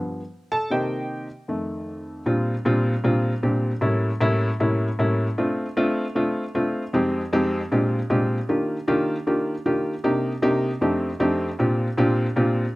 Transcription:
Already playing: G2 F3 B3
0.52 A4 A5
0.70 C3 D#3 A#3 G4 C5 D#5 G5
1.48 F2 D#3 A3
2.26 A#2 G3 C4 D4 F4
2.65 A#2 G3 C4 D4 F4
3.04 A#2 G3 C4 D4 F4
3.43 A#2 G3 C4 D4 G4
3.81 A2 G3 A#3 C#4 E4
4.20 A2 G3 A#3 C#4 E4
4.60 A2 G3 A#3 C#4 E4
4.99 A2 G3 A#3 C#4 E4
5.38 A3 C4 D4 F4
5.77 A3 C4 D4 F4
6.15 A3 C4 D4 F4
6.55 A3 C4 D4 F4
6.93 F2 G#3 C4 D#4 G4
7.33 F2 G#3 C4 D#4 G4
7.72 A#2 G#3 C4 D4 F4 G4
8.10 A#2 G#3 C4 D4 F4 G4
8.49 D#3 A#3 D4 F4 G4
8.88 D#3 A#3 D4 F4 G4
9.27 D#3 A#3 D4 F4 G4
9.66 D#3 A#3 D4 F4 G4
10.04 C3 A#3 D4 D#4 G4
10.42 C3 A#3 D4 D#4 G4
10.81 F2 A3 C4 D4 D#4 G4
11.20 F2 A3 C4 D4 D#4 G4
11.59 A#2 C4 D4 F4 G4
11.98 A#2 C4 D4 F4 G4
12.36 A#2 C4 D4 F4 G4

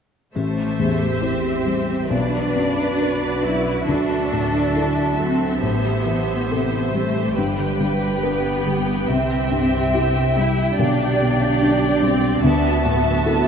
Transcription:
0.35 A1 A2 A3 G4 C5 E5, triangle
0.57 E3
0.79 E2 G3
1.01 E4
1.22 C4 E4 C5
1.44 E4
1.66 E3 G3
1.88 G3
2.10 B1 B2 D4 F#4 B4
2.14 D5
2.33 B3
2.55 F#2 F#3
2.77 D4
3.00 D4 B4
3.22 D4
3.44 F#3 B3 E4
3.66 F#3
3.88 D2 D3 D4 A4 E5
4.10 D4
4.33 A2 F#3
4.54 E4
4.76 E4 A4
4.98 E4
5.19 F#3 C4 D4
5.40 F#3
5.62 A1 A2 B3 G4 C5
5.84 E3
6.06 E3 G3
6.28 E4
6.50 C3 A4 C6
6.72 E4
6.93 E3 G3 A3
7.15 G3
7.37 G1 G2 G3 B4 G5
7.58 D3
7.80 D3 G3
8.01 G4
8.22 B3 D4 B4
8.45 G4
8.65 D3 G3
8.87 G3
9.08 C2 C3 C4 E5
9.30 C4
9.51 G2 G3
9.72 E4
9.94 E4 G4
10.15 E4
10.36 G3 C4 E4
10.57 G3
10.78 B1 D3 D4 G4 D5
10.99 B4
11.20 B2 G3
11.41 D4
11.61 D4 G4
11.82 D4
12.02 G3 C4
12.23 G3
12.43 D2 D3 B3 F#4 E5 A5
12.64 D4
12.84 A2 F#3
13.05 E4
13.25 B3 E4 A4

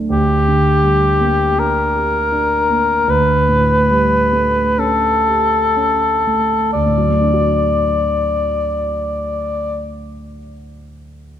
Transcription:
Already playing: A3 D4
0.10 D2 G4
0.48 D3
0.84 G3
1.21 A#3
1.58 D4 A#4
1.95 G4
2.32 D4
2.70 A#3
3.08 D2 B4
3.49 A2
3.90 G3
4.33 A3
4.78 C#4 A4
5.27 G4
5.76 C#4
6.27 A3
6.73 D2 D5
6.86 A2
6.98 F#3
7.09 A3
7.21 D4
7.33 F#4

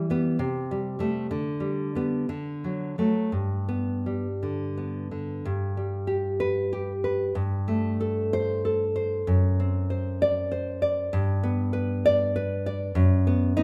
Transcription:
Already playing: E3
0.10 G3 B3
0.39 C3
0.71 G3
0.99 G3 A3
1.31 D3
1.60 G3
1.95 G3 B3
2.29 D3
2.64 F#3
2.98 F#3 A3
3.32 G2
3.69 B3
4.06 G3
4.43 D3
4.77 B3
5.11 D3
5.45 G2
5.77 G3
6.07 G4
6.40 B4
6.73 G4
7.04 B4
7.35 G2
7.68 A3
8.01 A4
8.33 C5
8.65 A4
8.96 C5
9.27 F#2
9.60 C4
9.90 C5
10.22 D5
10.52 C5
10.82 D5
11.13 G2
11.43 B3
11.73 B4
12.06 D5
12.36 B4
12.66 D5
12.95 F#2
13.27 B3
13.57 B3 D#4

